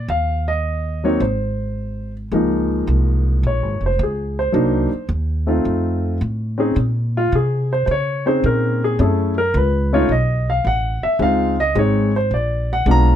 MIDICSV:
0, 0, Header, 1, 4, 480
1, 0, Start_track
1, 0, Key_signature, -5, "major"
1, 0, Tempo, 555556
1, 82, Time_signature, 4, 2, 24, 8
1, 11367, End_track
2, 0, Start_track
2, 0, Title_t, "Grand piano"
2, 0, Program_c, 0, 0
2, 85, Note_on_c, 0, 77, 85
2, 414, Note_on_c, 0, 75, 83
2, 424, Note_off_c, 0, 77, 0
2, 896, Note_on_c, 0, 54, 63
2, 902, Note_on_c, 0, 58, 61
2, 905, Note_on_c, 0, 73, 72
2, 908, Note_off_c, 0, 75, 0
2, 911, Note_on_c, 0, 60, 58
2, 911, Note_on_c, 0, 63, 71
2, 1028, Note_off_c, 0, 54, 0
2, 1031, Note_off_c, 0, 58, 0
2, 1036, Note_off_c, 0, 60, 0
2, 1036, Note_off_c, 0, 63, 0
2, 1037, Note_off_c, 0, 73, 0
2, 1049, Note_on_c, 0, 72, 67
2, 1822, Note_off_c, 0, 72, 0
2, 2006, Note_on_c, 0, 53, 59
2, 2006, Note_on_c, 0, 56, 56
2, 2010, Note_on_c, 0, 58, 55
2, 2020, Note_on_c, 0, 63, 66
2, 2996, Note_on_c, 0, 73, 73
2, 3301, Note_off_c, 0, 73, 0
2, 3336, Note_on_c, 0, 72, 75
2, 3355, Note_off_c, 0, 53, 0
2, 3355, Note_off_c, 0, 56, 0
2, 3357, Note_off_c, 0, 58, 0
2, 3362, Note_off_c, 0, 63, 0
2, 3460, Note_off_c, 0, 72, 0
2, 3485, Note_on_c, 0, 68, 62
2, 3785, Note_off_c, 0, 68, 0
2, 3793, Note_on_c, 0, 72, 80
2, 3907, Note_on_c, 0, 54, 64
2, 3913, Note_on_c, 0, 58, 57
2, 3917, Note_on_c, 0, 62, 60
2, 3927, Note_on_c, 0, 63, 72
2, 4213, Note_off_c, 0, 54, 0
2, 4216, Note_off_c, 0, 58, 0
2, 4218, Note_off_c, 0, 62, 0
2, 4223, Note_off_c, 0, 63, 0
2, 4378, Note_off_c, 0, 72, 0
2, 4724, Note_on_c, 0, 57, 57
2, 4728, Note_on_c, 0, 60, 53
2, 4734, Note_on_c, 0, 63, 51
2, 4738, Note_on_c, 0, 65, 62
2, 5328, Note_off_c, 0, 57, 0
2, 5330, Note_off_c, 0, 60, 0
2, 5333, Note_off_c, 0, 63, 0
2, 5335, Note_off_c, 0, 65, 0
2, 5683, Note_on_c, 0, 60, 66
2, 5689, Note_on_c, 0, 61, 62
2, 5695, Note_on_c, 0, 63, 60
2, 5700, Note_on_c, 0, 68, 75
2, 5822, Note_off_c, 0, 60, 0
2, 5825, Note_off_c, 0, 61, 0
2, 5828, Note_off_c, 0, 63, 0
2, 5831, Note_off_c, 0, 68, 0
2, 6197, Note_on_c, 0, 65, 82
2, 6330, Note_off_c, 0, 65, 0
2, 6354, Note_on_c, 0, 68, 76
2, 6660, Note_off_c, 0, 68, 0
2, 6676, Note_on_c, 0, 72, 81
2, 6780, Note_off_c, 0, 72, 0
2, 6793, Note_on_c, 0, 72, 62
2, 6827, Note_off_c, 0, 72, 0
2, 6837, Note_on_c, 0, 73, 87
2, 7136, Note_on_c, 0, 60, 57
2, 7140, Note_on_c, 0, 61, 55
2, 7141, Note_off_c, 0, 73, 0
2, 7144, Note_on_c, 0, 72, 87
2, 7146, Note_on_c, 0, 63, 54
2, 7155, Note_on_c, 0, 68, 63
2, 7283, Note_off_c, 0, 72, 0
2, 7308, Note_on_c, 0, 70, 77
2, 7617, Note_off_c, 0, 70, 0
2, 7627, Note_off_c, 0, 68, 0
2, 7640, Note_on_c, 0, 68, 82
2, 7734, Note_off_c, 0, 60, 0
2, 7736, Note_off_c, 0, 61, 0
2, 7739, Note_off_c, 0, 63, 0
2, 7769, Note_on_c, 0, 57, 61
2, 7770, Note_off_c, 0, 68, 0
2, 7771, Note_on_c, 0, 61, 58
2, 7778, Note_on_c, 0, 64, 56
2, 7783, Note_on_c, 0, 68, 73
2, 7794, Note_on_c, 0, 69, 69
2, 8064, Note_off_c, 0, 57, 0
2, 8065, Note_off_c, 0, 61, 0
2, 8068, Note_off_c, 0, 64, 0
2, 8070, Note_off_c, 0, 68, 0
2, 8100, Note_off_c, 0, 69, 0
2, 8104, Note_on_c, 0, 70, 95
2, 8243, Note_off_c, 0, 70, 0
2, 8270, Note_on_c, 0, 71, 81
2, 8577, Note_off_c, 0, 71, 0
2, 8577, Note_on_c, 0, 57, 72
2, 8581, Note_on_c, 0, 61, 70
2, 8588, Note_on_c, 0, 63, 70
2, 8588, Note_on_c, 0, 73, 85
2, 8590, Note_on_c, 0, 65, 85
2, 8709, Note_off_c, 0, 57, 0
2, 8711, Note_off_c, 0, 61, 0
2, 8714, Note_off_c, 0, 63, 0
2, 8715, Note_off_c, 0, 65, 0
2, 8725, Note_off_c, 0, 73, 0
2, 8741, Note_on_c, 0, 75, 83
2, 9053, Note_off_c, 0, 75, 0
2, 9069, Note_on_c, 0, 77, 86
2, 9206, Note_off_c, 0, 77, 0
2, 9218, Note_on_c, 0, 78, 99
2, 9531, Note_off_c, 0, 78, 0
2, 9533, Note_on_c, 0, 76, 87
2, 9673, Note_on_c, 0, 56, 61
2, 9677, Note_off_c, 0, 76, 0
2, 9680, Note_on_c, 0, 60, 57
2, 9684, Note_on_c, 0, 63, 57
2, 9692, Note_on_c, 0, 65, 66
2, 9698, Note_on_c, 0, 77, 92
2, 9975, Note_off_c, 0, 56, 0
2, 9979, Note_off_c, 0, 60, 0
2, 9981, Note_off_c, 0, 63, 0
2, 9985, Note_off_c, 0, 65, 0
2, 10011, Note_off_c, 0, 77, 0
2, 10024, Note_on_c, 0, 75, 91
2, 10154, Note_on_c, 0, 56, 60
2, 10159, Note_on_c, 0, 60, 53
2, 10162, Note_off_c, 0, 75, 0
2, 10164, Note_on_c, 0, 63, 55
2, 10172, Note_on_c, 0, 68, 64
2, 10184, Note_on_c, 0, 73, 79
2, 10456, Note_off_c, 0, 56, 0
2, 10458, Note_off_c, 0, 60, 0
2, 10461, Note_off_c, 0, 63, 0
2, 10465, Note_off_c, 0, 68, 0
2, 10494, Note_off_c, 0, 73, 0
2, 10509, Note_on_c, 0, 72, 82
2, 10645, Note_off_c, 0, 72, 0
2, 10661, Note_on_c, 0, 74, 77
2, 10972, Note_off_c, 0, 74, 0
2, 10997, Note_on_c, 0, 78, 94
2, 11115, Note_on_c, 0, 56, 57
2, 11124, Note_on_c, 0, 59, 56
2, 11126, Note_on_c, 0, 62, 57
2, 11130, Note_off_c, 0, 78, 0
2, 11134, Note_on_c, 0, 65, 67
2, 11155, Note_on_c, 0, 82, 110
2, 11367, Note_off_c, 0, 56, 0
2, 11367, Note_off_c, 0, 59, 0
2, 11367, Note_off_c, 0, 62, 0
2, 11367, Note_off_c, 0, 65, 0
2, 11367, Note_off_c, 0, 82, 0
2, 11367, End_track
3, 0, Start_track
3, 0, Title_t, "Upright bass"
3, 0, Program_c, 1, 32
3, 73, Note_on_c, 1, 39, 84
3, 1002, Note_off_c, 1, 39, 0
3, 1040, Note_on_c, 1, 32, 80
3, 1966, Note_off_c, 1, 32, 0
3, 2001, Note_on_c, 1, 37, 77
3, 2467, Note_off_c, 1, 37, 0
3, 2483, Note_on_c, 1, 36, 83
3, 2948, Note_off_c, 1, 36, 0
3, 2966, Note_on_c, 1, 34, 75
3, 3130, Note_off_c, 1, 34, 0
3, 3130, Note_on_c, 1, 32, 52
3, 3284, Note_off_c, 1, 32, 0
3, 3289, Note_on_c, 1, 29, 61
3, 3434, Note_off_c, 1, 29, 0
3, 3449, Note_on_c, 1, 37, 85
3, 3911, Note_off_c, 1, 37, 0
3, 3921, Note_on_c, 1, 36, 79
3, 4230, Note_off_c, 1, 36, 0
3, 4395, Note_on_c, 1, 39, 89
3, 4864, Note_off_c, 1, 39, 0
3, 4883, Note_on_c, 1, 41, 80
3, 5348, Note_off_c, 1, 41, 0
3, 5365, Note_on_c, 1, 45, 82
3, 5830, Note_off_c, 1, 45, 0
3, 5840, Note_on_c, 1, 46, 87
3, 6307, Note_off_c, 1, 46, 0
3, 6327, Note_on_c, 1, 48, 87
3, 6790, Note_off_c, 1, 48, 0
3, 6802, Note_on_c, 1, 49, 85
3, 7268, Note_off_c, 1, 49, 0
3, 7289, Note_on_c, 1, 46, 85
3, 7751, Note_off_c, 1, 46, 0
3, 7767, Note_on_c, 1, 42, 82
3, 8230, Note_off_c, 1, 42, 0
3, 8243, Note_on_c, 1, 37, 93
3, 8708, Note_off_c, 1, 37, 0
3, 8716, Note_on_c, 1, 35, 72
3, 9184, Note_off_c, 1, 35, 0
3, 9198, Note_on_c, 1, 33, 79
3, 9507, Note_off_c, 1, 33, 0
3, 9670, Note_on_c, 1, 37, 81
3, 10141, Note_off_c, 1, 37, 0
3, 10155, Note_on_c, 1, 32, 86
3, 10624, Note_off_c, 1, 32, 0
3, 10634, Note_on_c, 1, 34, 74
3, 11103, Note_off_c, 1, 34, 0
3, 11110, Note_on_c, 1, 35, 86
3, 11367, Note_off_c, 1, 35, 0
3, 11367, End_track
4, 0, Start_track
4, 0, Title_t, "Muted upright bass strokes"
4, 4252, Note_on_c, 9, 29, 40
4, 4338, Note_off_c, 9, 29, 0
4, 9533, Note_on_c, 9, 29, 39
4, 9619, Note_off_c, 9, 29, 0
4, 11367, End_track
0, 0, End_of_file